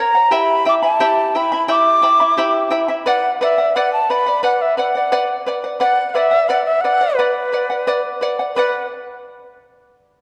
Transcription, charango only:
0.00 0.15 A#4 medium
0.00 0.15 C#5 medium
0.00 0.14 F#5 medium
0.15 0.31 C#5 soft
0.15 0.31 F#5 medium
0.31 0.65 E4 medium
0.31 0.66 G4 medium
0.31 0.65 E5 medium
0.31 0.64 G5 medium
0.31 0.66 B5 medium
0.65 0.83 E4 medium
0.65 0.82 E5 medium
0.65 0.83 G5 medium
0.65 0.81 B5 medium
0.83 1.00 E4 soft
0.83 1.00 E5 soft
0.83 1.00 B5 medium
1.00 1.34 E4 medium
1.00 1.35 G4 medium
1.00 1.35 E5 medium
1.00 1.34 G5 medium
1.00 1.35 B5 medium
1.35 1.52 E4 medium
1.35 1.51 E5 medium
1.35 1.52 G5 medium
1.35 1.51 B5 medium
1.52 1.68 E4 medium
1.52 1.68 E5 medium
1.52 1.68 B5 medium
1.68 2.02 E4 medium
1.68 2.03 G4 medium
1.68 2.02 E5 medium
1.68 2.01 G5 medium
1.68 2.02 B5 medium
2.02 2.20 E4 medium
2.02 2.19 E5 medium
2.02 2.20 G5 medium
2.02 2.19 B5 medium
2.20 2.37 E4 soft
2.20 2.37 E5 medium
2.20 2.37 B5 medium
2.37 2.70 E4 medium
2.37 2.72 G4 medium
2.37 2.70 E5 medium
2.37 2.69 G5 medium
2.37 2.70 B5 medium
2.70 2.88 E4 medium
2.70 2.88 E5 medium
2.70 2.89 G5 medium
2.70 2.87 B5 medium
2.88 3.06 E4 soft
2.88 3.06 E5 soft
2.88 3.06 B5 medium
3.06 3.40 B4 medium
3.06 3.41 D5 medium
3.06 3.41 F#5 medium
3.41 3.58 B4 medium
3.41 3.58 D5 medium
3.41 3.57 F#5 medium
3.58 3.75 D5 medium
3.58 3.75 F#5 medium
3.76 4.09 B4 medium
3.76 4.09 D5 medium
3.76 4.10 F#5 medium
4.10 4.27 B4 medium
4.10 4.27 D5 medium
4.10 4.25 F#5 medium
4.26 4.42 D5 medium
4.26 4.43 F#5 medium
4.43 4.76 B4 medium
4.43 4.77 D5 medium
4.43 4.78 F#5 medium
4.77 4.95 B4 medium
4.77 4.95 D5 medium
4.77 4.94 F#5 medium
4.95 5.11 D5 soft
4.95 5.11 F#5 medium
5.12 5.45 B4 medium
5.12 5.46 D5 medium
5.12 5.47 F#5 loud
5.46 5.64 B4 medium
5.46 5.64 D5 medium
5.46 5.63 F#5 medium
5.64 5.80 D5 soft
5.64 5.80 F#5 medium
5.80 6.14 B4 medium
5.80 6.14 D5 medium
5.80 6.15 F#5 medium
6.15 6.33 B4 medium
6.15 6.32 D5 medium
6.15 6.30 F#5 medium
6.31 6.49 D5 soft
6.31 6.49 F#5 medium
6.49 6.83 B4 medium
6.49 6.83 D5 medium
6.49 6.84 F#5 medium
6.84 7.01 B4 medium
6.84 7.01 D5 medium
6.84 7.00 F#5 medium
7.01 7.18 D5 soft
7.01 7.19 F#5 medium
7.19 7.51 B4 medium
7.19 7.52 D5 medium
7.19 7.53 F#5 medium
7.52 7.70 B4 medium
7.52 7.70 D5 medium
7.52 7.69 F#5 medium
7.70 7.86 D5 soft
7.70 7.87 F#5 medium
7.87 8.20 B4 medium
7.87 8.21 D5 medium
7.87 8.21 F#5 medium
8.21 8.39 B4 medium
8.21 8.39 D5 medium
8.21 8.38 F#5 medium
8.39 8.56 D5 soft
8.39 8.56 F#5 medium
8.56 8.84 B4 medium
8.56 8.84 D5 medium
8.56 8.85 F#5 loud

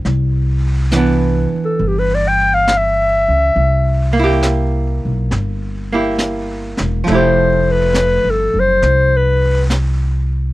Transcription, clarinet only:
1.65 1.89 A4 medium
1.88 2.01 G4 medium
1.99 2.16 B4 medium
2.15 2.29 D5 medium
2.28 2.56 G5 medium
2.54 2.79 F5 medium
2.77 4.21 E5 medium
7.15 7.73 C5 medium
7.72 8.32 B4 medium
8.30 8.61 A4 medium
8.60 9.18 C5 medium
9.17 9.64 B4 medium

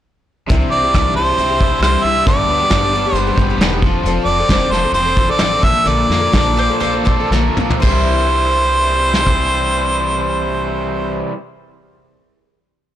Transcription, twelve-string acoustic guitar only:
0.50 0.83 C3 medium
0.50 0.83 G3 medium
0.50 0.83 D4 medium
0.50 0.83 E4 medium
0.50 0.82 G4 medium
0.83 0.94 D4 soft
0.83 0.94 E4 soft
0.83 0.94 G4 soft
0.94 1.16 C3 medium
0.94 1.16 G3 medium
0.94 1.16 D4 medium
0.94 1.17 E4 medium
0.94 1.17 G4 medium
1.17 1.27 G3 soft
1.17 1.28 D4 medium
1.17 1.28 E4 medium
1.17 1.27 G4 medium
1.28 1.38 D4 soft
1.28 1.39 E4 soft
1.28 1.39 G4 soft
1.38 1.49 G3 soft
1.38 1.50 D4 medium
1.38 1.50 E4 medium
1.38 1.48 G4 medium
1.49 1.60 D4 soft
1.49 1.61 E4 soft
1.49 1.60 G4 medium
1.61 1.72 G3 medium
1.61 1.71 D4 medium
1.61 1.70 E4 soft
1.61 1.68 G4 medium
1.69 1.81 D4 soft
1.69 1.82 E4 soft
1.69 1.81 G4 soft
1.82 2.04 C3 medium
1.82 2.03 G3 medium
1.82 2.04 D4 medium
1.82 2.04 E4 medium
1.82 2.05 G4 medium
2.04 2.26 G3 medium
2.04 2.26 D4 medium
2.04 2.27 E4 medium
2.04 2.26 G4 medium
2.26 2.60 G2 medium
2.26 2.60 D3 medium
2.26 2.60 G3 medium
2.26 2.60 B3 medium
2.26 2.59 D4 medium
2.26 2.59 G4 medium
2.60 2.69 G3 soft
2.60 2.69 B3 soft
2.60 2.70 D4 soft
2.60 2.70 G4 soft
2.70 2.93 G2 medium
2.70 2.93 D3 medium
2.70 2.92 G3 medium
2.70 2.93 B3 medium
2.70 2.93 D4 medium
2.70 2.93 G4 medium
2.93 3.04 G3 medium
2.93 3.05 B3 medium
2.93 3.05 D4 medium
2.93 3.04 G4 medium
3.05 3.14 G3 soft
3.05 3.15 B3 soft
3.05 3.16 D4 soft
3.05 3.16 G4 medium
3.16 3.27 G3 medium
3.16 3.26 B3 medium
3.16 3.26 D4 medium
3.16 3.25 G4 medium
3.27 3.37 G3 soft
3.27 3.38 B3 soft
3.27 3.38 D4 medium
3.27 3.38 G4 medium
3.38 3.49 G3 medium
3.38 3.49 B3 medium
3.38 3.49 D4 medium
3.38 3.48 G4 medium
3.50 3.60 G3 soft
3.50 3.60 B3 soft
3.50 3.60 D4 soft
3.50 3.60 G4 soft
3.61 3.71 G2 medium
3.61 3.71 D3 medium
3.61 3.72 G3 medium
3.61 3.72 B3 medium
3.61 3.72 D4 medium
3.61 3.71 G4 loud
3.72 3.83 G3 soft
3.72 3.83 B3 soft
3.72 3.83 D4 soft
3.72 3.83 G4 soft
3.84 4.04 F3 medium
3.84 4.05 C4 medium
3.84 4.05 D4 medium
3.84 4.06 A4 medium
4.06 4.38 F3 medium
4.06 4.39 C4 medium
4.06 4.39 D4 medium
4.06 4.38 A4 medium
4.39 4.50 C4 soft
4.39 4.49 D4 soft
4.39 4.49 A4 soft
4.51 4.71 F3 medium
4.51 4.72 C4 medium
4.51 4.72 D4 medium
4.51 4.73 A4 medium
4.72 4.83 F3 soft
4.72 4.83 C4 medium
4.72 4.84 D4 medium
4.72 4.83 A4 medium
4.84 4.95 C4 soft
4.84 4.95 D4 soft
4.84 4.94 A4 medium
4.95 5.06 F3 medium
4.95 5.06 C4 medium
4.95 5.06 D4 medium
4.95 5.04 A4 medium
5.05 5.17 C4 soft
5.05 5.17 D4 soft
5.05 5.16 A4 soft
5.18 5.29 F3 soft
5.18 5.29 C4 medium
5.18 5.28 D4 medium
5.18 5.27 A4 medium
5.29 5.39 C4 soft
5.29 5.40 D4 soft
5.29 5.40 A4 soft
5.39 5.51 F3 medium
5.39 5.51 C4 medium
5.39 5.52 D4 medium
5.39 5.51 A4 medium
5.52 5.63 C4 soft
5.52 5.62 D4 soft
5.52 5.63 A4 soft
5.62 5.84 F3 soft
5.62 5.85 A#3 medium
5.62 5.85 D4 medium
5.62 5.85 A4 medium
5.85 6.21 A#2 medium
5.85 6.21 D3 medium
5.85 6.21 F3 medium
5.85 6.20 A#3 medium
5.85 6.20 D4 medium
5.85 6.19 A4 medium
6.20 6.31 F3 soft
6.20 6.32 A#3 soft
6.20 6.33 D4 soft
6.20 6.32 A4 soft
6.32 6.57 A#2 medium
6.32 6.57 D3 medium
6.32 6.54 F3 medium
6.32 6.54 A#3 medium
6.32 6.56 D4 medium
6.32 6.55 A4 medium
6.55 6.68 F3 medium
6.55 6.68 A#3 medium
6.55 6.69 D4 medium
6.55 6.68 A4 medium
6.69 6.79 F3 soft
6.69 6.80 A#3 medium
6.69 6.80 D4 medium
6.69 6.80 A4 medium
6.80 6.93 F3 medium
6.80 6.93 A#3 medium
6.80 6.92 D4 medium
6.80 6.92 A4 medium
6.93 7.05 F3 soft
6.93 7.05 A#3 soft
6.93 7.06 D4 medium
6.93 7.06 A4 medium
7.06 7.19 F3 medium
7.06 7.19 A#3 medium
7.06 7.19 D4 medium
7.06 7.19 A4 medium
7.20 7.32 F3 soft
7.20 7.32 A#3 soft
7.20 7.32 D4 soft
7.20 7.32 A4 medium
7.34 7.58 A#2 medium
7.34 7.58 D3 medium
7.34 7.57 F3 medium
7.34 7.58 A#3 medium
7.34 7.58 D4 medium
7.34 7.58 A4 medium
7.58 7.83 F3 medium
7.58 7.84 A#3 medium
7.58 7.84 D4 medium
7.58 7.84 A4 medium
7.80 11.30 C3 medium
7.85 11.35 G3 medium
7.85 11.38 D4 medium
7.92 11.42 E4 medium
7.92 11.45 G4 medium

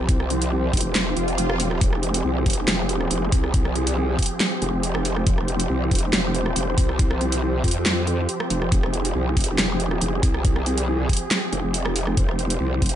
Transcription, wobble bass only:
0.00 0.72 C2 loud
0.73 0.83 F1 loud
0.85 0.93 F1 loud
0.95 1.15 F1 loud
1.17 1.62 F1 medium
1.62 1.80 E1 medium
1.81 2.23 F1 loud
2.25 2.44 C2 loud
2.46 2.66 F1 loud
2.68 3.09 F1 loud
3.11 3.31 F1 loud
3.32 4.17 C2 loud
4.62 4.71 F1 loud
4.73 5.25 F1 loud
5.27 5.68 F1 loud
5.70 5.90 C2 loud
5.91 6.11 F1 loud
6.13 6.54 F1 loud
6.56 6.76 F1 loud
6.78 7.62 C2 medium
7.64 8.27 F2 loud
8.50 8.70 F1 loud
8.72 9.14 F1 loud
9.15 9.35 C2 loud
9.37 9.57 F1 loud
9.58 10.00 F1 loud
10.02 10.21 F1 loud
10.23 11.08 C2 medium
11.53 11.62 F1 loud
11.64 12.16 F1 loud
12.17 12.59 F1 loud
12.60 12.80 C2 loud
12.82 12.96 F1 loud

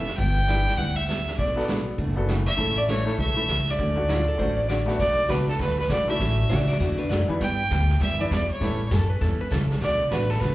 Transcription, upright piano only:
0.47 0.93 B3 medium
0.47 0.93 D4 medium
0.47 0.93 E4 medium
0.47 0.94 G4 medium
1.55 1.95 B3 medium
1.55 1.96 D4 medium
1.55 1.96 F#4 medium
1.55 1.96 A4 medium
2.15 2.26 B3 medium
2.15 2.27 D4 medium
2.15 2.27 F#4 medium
2.15 2.27 A4 medium
2.56 2.74 A3 medium
2.56 2.75 C#4 medium
2.56 2.75 E4 medium
2.56 2.75 A4 medium
3.05 3.16 A3 medium
3.05 3.17 C#4 medium
3.05 3.17 E4 medium
3.05 3.17 A4 medium
3.35 3.47 A3 medium
3.35 3.47 C#4 medium
3.35 3.47 E4 medium
3.35 3.48 A4 medium
3.96 4.07 A3 medium
3.96 4.07 C#4 medium
3.96 4.08 D4 medium
3.96 4.08 F#4 medium
4.37 4.55 A3 medium
4.37 4.55 C#4 medium
4.37 4.56 D4 medium
4.37 4.56 A4 medium
4.86 4.97 A3 medium
4.86 4.98 B3 medium
4.86 4.98 D4 medium
4.86 4.98 F#4 medium
5.29 5.46 F#3 medium
5.29 5.46 A3 medium
5.29 5.46 B3 medium
5.29 5.46 D4 medium
5.29 5.47 F#4 medium
6.07 6.47 F#3 medium
6.07 6.47 A3 medium
6.07 6.48 C#4 medium
6.07 6.48 D4 medium
6.07 6.48 E4 medium
7.28 7.39 E3 medium
7.28 7.39 G3 medium
7.28 7.39 B3 medium
7.28 7.39 D4 medium
7.28 7.40 E4 medium
8.19 8.29 E3 medium
8.19 8.30 G3 medium
8.19 8.30 B3 medium
8.19 8.30 D4 medium
8.19 8.30 E4 medium
8.60 9.44 A3 medium
8.60 9.44 B3 medium
8.60 9.45 C#4 medium
8.60 9.45 E4 medium
8.60 9.44 G4 medium

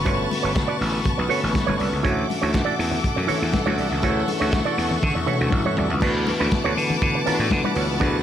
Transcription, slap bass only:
0.06 0.25 G1 medium
0.44 0.63 G1 medium
0.81 0.99 A1 medium
1.19 1.27 B1 loud
1.43 1.52 A1 medium
1.68 1.77 G1 loud
1.80 1.90 C2 medium
1.93 2.02 C#2 medium
2.05 2.24 D2 loud
2.42 2.61 D2 medium
2.79 2.98 E2 medium
3.17 3.26 F#2 medium
3.42 3.51 E2 medium
3.67 3.80 D2 loud
3.78 3.88 C2 loud
3.92 4.00 C#2 medium
4.03 4.22 D2 medium
4.41 4.60 D2 medium
4.78 4.96 E2 medium
5.03 5.13 D3 medium
5.16 5.25 E2 medium
5.41 5.49 D2 medium
5.53 5.62 A1 medium
5.78 5.91 C2 loud
5.91 5.99 C#2 medium
6.02 6.30 D2 medium
6.40 6.49 D2 medium
6.65 6.74 D2 loud
6.77 6.95 D3 medium
7.02 7.20 D3 medium
7.39 7.48 A2 medium
7.52 7.61 D3 medium
7.76 7.89 D2 loud
7.89 7.98 C#2 medium
8.01 8.23 D2 loud

